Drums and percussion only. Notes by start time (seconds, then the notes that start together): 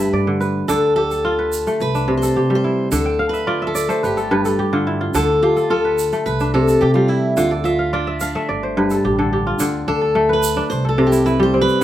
0.41 shaker
0.69 shaker
1.11 shaker
1.52 shaker
1.67 shaker
1.80 shaker
1.95 shaker
2.22 shaker
2.92 shaker
3.34 shaker
3.75 shaker
3.90 shaker
4.04 shaker
4.17 shaker
4.45 shaker
5.14 shaker
5.57 shaker
5.98 shaker
6.12 shaker
6.26 shaker
6.40 shaker
6.68 shaker
7.37 shaker
7.65 shaker
8.20 shaker
8.90 shaker
9.59 shaker
10.43 shaker
10.70 shaker
11.12 shaker
11.26 shaker
11.68 shaker